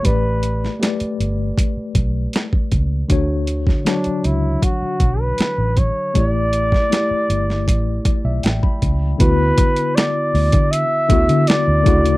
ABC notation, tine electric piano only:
X:1
M:4/4
L:1/16
Q:1/4=79
K:D
V:1 name="Tine electric piano"
[A,GBd]4 [A,GBd]6 z6 | [D,DFc]4 [F,DFc]6 z6 | [A,EGd]4 [A,EGd]6 d e g b3 | [D,B,EF]6 z4 [D,B,EF]4 [C,D,A,EF]2 |]